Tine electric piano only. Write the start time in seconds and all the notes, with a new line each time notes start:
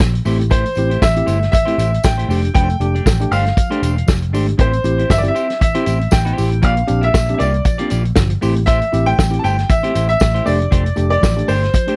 0.00 A#2 F3
0.26 C4 E4 G4
0.41 E4 G4
0.53 A2 E3
0.78 C4 E4 G4
1.03 A2 E3
1.17 C4 E4 G4
1.27 E4 G4
1.53 A2 E3
1.67 C4 E4 G4
1.79 E4 G4
2.04 A2 E3
2.30 A3 D4 G4
2.45 D4 G4
2.54 F3
2.80 A3 D4 G4
2.95 D4 G4
3.07 F3
3.20 A3 D4 G4
3.32 D4 G4
3.57 F3
3.70 A3 D4 G4
4.07 F3
4.34 A3 D4 G4
4.48 D4 G4
4.59 A2 E3
4.84 C4 E4 G4
4.98 E4 G4
5.09 A2 E3
5.23 C4 E4 G4
5.34 G4
5.61 A2 E3
5.75 C4 E4 G4
5.86 E4 G4
6.12 A2 E3
6.37 C4 E4 G4
6.52 E4 G4
6.63 A#2 F3
6.87 C4 D4 G4
7.04 D4 G4
7.14 A#2 F3
7.29 C4 D4 G4
7.40 D4 G4
7.66 A#2 F3
7.80 C4 D4 G4
7.92 D4 G4
8.18 A#2 F3
8.42 C4 E4 G4
8.57 E4 G4
8.68 A2 E3
8.93 C4 E4 G4
9.07 E4 G4
9.17 A2 E3
9.30 C4 E4 G4
9.43 E4 G4
9.69 A2 E3
9.83 C4 E4 G4
9.96 E4 G4
10.21 A2 E3
10.46 A3 D4 G4
10.71 F3
10.96 A3 D4 G4
11.22 F3
11.36 A3 D4 G4
11.47 D4 G4
11.74 F3
11.87 A3 D4 G4